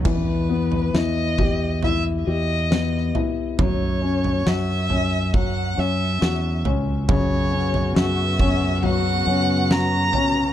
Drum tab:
CC |x---------------|----------------|----------------|
SD |----o-------o---|----o-------o---|----o-------o---|
FT |o--o--o-o-----o-|o--o--o-o-----o-|o--o--o-o-----o-|
BD |o-----o---------|o-------o-------|o-----o---------|